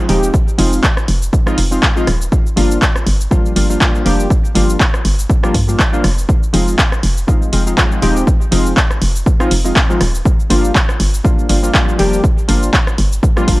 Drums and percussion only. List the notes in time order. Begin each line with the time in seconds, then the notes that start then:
0.09 open hi-hat
0.23 cabasa
0.34 kick, cabasa
0.48 cabasa
0.59 open hi-hat
0.73 cabasa
0.83 kick, clap, cabasa
0.97 cross-stick, cabasa
1.08 open hi-hat
1.22 cabasa
1.33 kick, cabasa
1.47 cross-stick, cabasa
1.58 open hi-hat
1.72 cabasa
1.83 kick, clap, cabasa
1.97 cabasa
2.07 cross-stick, open hi-hat
2.22 cabasa
2.32 kick, cabasa
2.46 cabasa
2.57 open hi-hat
2.71 cabasa
2.82 kick, clap, cabasa
2.96 cross-stick, cabasa
3.07 open hi-hat
3.21 cabasa
3.31 kick, cabasa
3.46 cabasa
3.56 open hi-hat
3.70 cabasa
3.81 kick, clap, cabasa
3.95 cabasa
4.06 open hi-hat
4.20 cabasa
4.30 kick, cabasa
4.45 cabasa
4.55 open hi-hat
4.70 cabasa
4.80 kick, clap, cabasa
4.94 cross-stick, cabasa
5.05 open hi-hat
5.19 cabasa
5.30 kick, cabasa
5.44 cross-stick, cabasa
5.54 kick, open hi-hat
5.69 cabasa
5.79 kick, clap, cabasa
5.94 cabasa
6.04 cross-stick, open hi-hat
6.18 cabasa
6.29 kick, cabasa
6.43 cabasa
6.54 open hi-hat
6.68 cabasa
6.78 kick, clap, cabasa
6.92 cross-stick, cabasa
7.03 open hi-hat
7.18 cabasa
7.28 kick, cabasa
7.42 cabasa
7.53 open hi-hat
7.67 cabasa
7.78 kick, clap, cabasa
7.92 cabasa
8.02 open hi-hat
8.17 cabasa
8.27 kick, cabasa
8.41 cabasa
8.52 open hi-hat
8.66 cabasa
8.77 kick, clap, cabasa
8.91 cross-stick, cabasa
9.02 open hi-hat
9.16 cabasa
9.26 kick, cabasa
9.40 cross-stick, cabasa
9.51 open hi-hat
9.65 cabasa
9.76 kick, clap, cabasa
9.90 cabasa
10.01 cross-stick, open hi-hat
10.15 cabasa
10.25 kick, cabasa
10.40 cabasa
10.50 open hi-hat
10.65 cabasa
10.75 kick, clap, cabasa
10.89 cross-stick, cabasa
11.00 open hi-hat
11.14 cabasa
11.25 kick, cabasa
11.39 cabasa
11.49 open hi-hat
11.64 cabasa
11.74 kick, clap, cabasa
11.89 cabasa
11.99 open hi-hat
12.13 cabasa
12.24 kick, cabasa
12.38 cabasa
12.49 open hi-hat
12.63 cabasa
12.73 kick, clap, cabasa
12.87 cross-stick, cabasa
12.98 open hi-hat
13.13 cabasa
13.23 kick, cabasa
13.37 cross-stick, cabasa
13.48 kick, open hi-hat